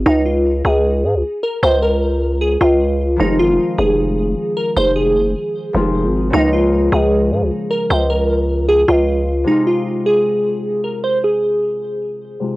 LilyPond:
<<
  \new Staff \with { instrumentName = "Synth keys" } { \time 4/4 \key f \minor \tempo 4 = 153 ees'8 f'4 aes'2 bes'8 | c''8 bes'4. aes'8 f'4. | ees'8 f'4 aes'2 bes'8 | c''8 aes'2.~ aes'8 |
ees'8 f'4 aes'2 bes'8 | c''8 bes'4. aes'8 f'4. | ees'8 f'4 aes'2 bes'8 | c''8 aes'2.~ aes'8 | }
  \new Staff \with { instrumentName = "Harp" } { \clef bass \time 4/4 \key f \minor r1 | r1 | <ees f aes c' f'>1~ | <ees f aes c' f'>2~ <ees f aes c' f'>8 <ees f aes c' f'>4. |
<des f aes bes f'>1~ | <des f aes bes f'>1 | <c aes ees' f'>1~ | <c aes ees' f'>2.~ <c aes ees' f'>8 <c aes ees' f'>8 | }
  \new Staff \with { instrumentName = "808-style bass" } { \clef bass \time 4/4 \key f \minor des,4. des,4 aes,16 des,16 r4 | des,2~ des,8 des,4. | f,,8 aes,,16 f,,16 r8 f,,4. r4 | f,,4 ges,,16 f,,16 r4 f,,8. aes,,8. |
des,4. des,4 aes,16 des,16 r4 | des,2~ des,8 des,4. | r1 | r1 | }
>>